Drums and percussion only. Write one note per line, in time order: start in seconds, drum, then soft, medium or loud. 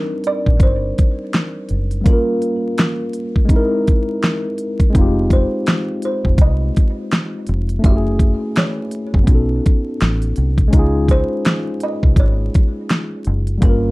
0.24 closed hi-hat medium
0.46 kick medium
0.60 kick loud
0.60 closed hi-hat medium
0.98 kick medium
0.98 closed hi-hat medium
1.33 snare medium
1.33 closed hi-hat medium
1.69 closed hi-hat medium
1.91 closed hi-hat soft
2.06 kick loud
2.06 closed hi-hat medium
2.42 closed hi-hat medium
2.78 snare loud
2.78 closed hi-hat medium
3.13 closed hi-hat medium
3.36 kick medium
3.49 kick loud
3.49 closed hi-hat medium
3.87 kick medium
3.87 closed hi-hat medium
4.22 snare medium
4.22 closed hi-hat medium
4.58 closed hi-hat medium
4.80 kick medium
4.80 closed hi-hat soft
4.95 kick loud
4.95 closed hi-hat medium
5.30 kick medium
5.30 closed hi-hat medium
5.66 snare loud
5.66 closed hi-hat medium
6.02 closed hi-hat medium
6.25 kick medium
6.38 kick loud
6.38 closed hi-hat medium
6.76 kick medium
6.76 closed hi-hat medium
7.11 snare medium
7.11 closed hi-hat medium
7.47 closed hi-hat medium
7.69 closed hi-hat medium
7.84 kick loud
7.84 closed hi-hat medium
8.19 kick medium
8.19 closed hi-hat medium
8.56 snare loud
8.56 closed hi-hat medium
8.91 closed hi-hat medium
9.14 kick medium
9.27 kick loud
9.27 closed hi-hat medium
9.66 kick medium
9.66 closed hi-hat medium
10.00 snare medium
10.00 closed hi-hat medium
10.22 closed hi-hat soft
10.36 closed hi-hat medium
10.58 kick medium
10.58 closed hi-hat soft
10.73 kick loud
10.73 closed hi-hat medium
11.08 kick medium
11.08 closed hi-hat medium
11.45 snare loud
11.45 closed hi-hat medium
11.80 closed hi-hat medium
12.03 kick medium
12.16 kick loud
12.16 closed hi-hat medium
12.54 kick loud
12.54 closed hi-hat medium
12.89 snare medium
12.89 closed hi-hat medium
13.24 closed hi-hat medium
13.47 closed hi-hat soft
13.62 kick loud
13.62 closed hi-hat medium